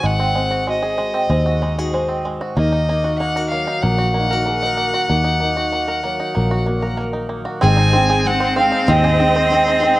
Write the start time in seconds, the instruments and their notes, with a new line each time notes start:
Already playing: five-string banjo C4 F#4
0.03 fingered electric bass G#1, steel-string acoustic guitar G#2, five-string banjo G#3, fiddle F#5
0.19 five-string banjo C4
0.35 five-string banjo G#3, steel-string acoustic guitar C4
0.51 five-string banjo F#4
0.67 five-string banjo G#3, steel-string acoustic guitar F#4, fiddle D#5
0.82 five-string banjo G#4
0.98 five-string banjo G#3, steel-string acoustic guitar G#3
1.14 five-string banjo C4
1.30 fingered electric bass D#2, five-string banjo G#3, steel-string acoustic guitar C5
1.46 five-string banjo F#4
1.61 steel-string acoustic guitar D#3 D#4, five-string banjo G#3
1.78 steel-string acoustic guitar F#4, five-string banjo G#4
1.93 five-string banjo G#3, steel-string acoustic guitar C5
2.08 five-string banjo C4
2.25 five-string banjo G#3
2.41 five-string banjo F#4
2.56 fingered electric bass D#2, steel-string acoustic guitar D#3, five-string banjo A#3, fiddle D#5
2.72 five-string banjo D#4
2.89 five-string banjo A#3, steel-string acoustic guitar D#4
3.04 five-string banjo F#4
3.19 five-string banjo A#3, steel-string acoustic guitar D#4, fiddle F#5
3.36 steel-string acoustic guitar F#4, five-string banjo A#4
3.49 steel-string acoustic guitar F#3, five-string banjo A#3, fiddle F5
3.67 five-string banjo D#4
3.82 fingered electric bass A#1, five-string banjo A#3, steel-string acoustic guitar A#4, fiddle F#5
3.98 five-string banjo F#4
4.14 steel-string acoustic guitar A#2 D#4, five-string banjo A#3
4.30 steel-string acoustic guitar F#4, five-string banjo A#4
4.46 five-string banjo A#3, steel-string acoustic guitar G#4
4.62 five-string banjo D#4, steel-string acoustic guitar A#4
4.77 five-string banjo A#3
4.94 five-string banjo F#4
5.09 fingered electric bass D#2, steel-string acoustic guitar D#3, five-string banjo A#3
5.24 five-string banjo D#4
5.40 five-string banjo A#3, steel-string acoustic guitar D#4
5.57 five-string banjo F#4
5.72 five-string banjo A#3, steel-string acoustic guitar F#4
5.88 five-string banjo A#4
6.04 steel-string acoustic guitar F#3, five-string banjo A#3
6.20 five-string banjo D#4
6.35 fingered electric bass A#1, five-string banjo A#3, steel-string acoustic guitar A#4
6.51 five-string banjo F#4
6.66 steel-string acoustic guitar A#2 F#4, five-string banjo A#3
6.82 five-string banjo A#4
6.97 five-string banjo A#3, steel-string acoustic guitar A#4
7.13 five-string banjo D#4
7.29 five-string banjo A#3
7.45 five-string banjo F#4
7.61 upright piano G#1 G#2 G#3 C4 D#4 C5 D#5, fingered electric bass G#1, steel-string acoustic guitar G#2 D#3 G#3 C4 D#4 G#4, five-string banjo C4, cello C4, fiddle G#5
7.77 five-string banjo D#4
7.93 steel-string acoustic guitar G#3 C4 D#4 G#4, five-string banjo C4
8.10 five-string banjo G#4
8.25 steel-string acoustic guitar G#3 C4 D#4 G#4, fiddle F#5
8.40 five-string banjo C5
8.56 steel-string acoustic guitar G#3 C4 D#4 G#4, five-string banjo C4, fiddle F5
8.72 five-string banjo D#4
8.87 fingered electric bass D#2, steel-string acoustic guitar G#2 D#3 G#3 C4 D#4 G#4, five-string banjo C4, fiddle D#5
9.04 five-string banjo G#4
9.18 steel-string acoustic guitar G#3 C4 D#4 G#4, five-string banjo C4
9.36 five-string banjo C5
9.50 steel-string acoustic guitar G#3 C4 D#4 G#4, five-string banjo C4
9.67 five-string banjo D#4
9.80 steel-string acoustic guitar G#3 C4 D#4 G#4, five-string banjo C4